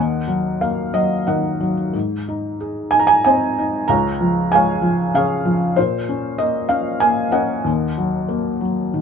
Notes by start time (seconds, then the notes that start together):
Already playing: D#2 A#4 D#5 F#5
0.27 F#3
0.61 A#3 F5
0.93 F#3 D#5
1.27 D#3 A#4 D#5 F#5
1.60 F#3
1.93 G#2
2.28 D#4
2.60 G#4
2.91 D#4 G#5
2.99 A#5
3.07 G#5
3.25 C4 C5 D#5 G#5
3.58 D#4
3.88 C#2 C#5 F5 A#5
4.21 F3
4.52 G#3 C#5 F5 G#5
4.82 F3
5.14 C#3 G#4 C#5 F5
5.45 F3
5.76 A#2 F4 C5
6.09 C#4
6.38 A#3 D#5
6.69 C#4 F5
7.00 A#3 G#5
7.32 C#4 A#4 D#5 F#5
7.64 D#2
7.98 F#3
8.29 A#3
8.61 F#3
8.94 D#3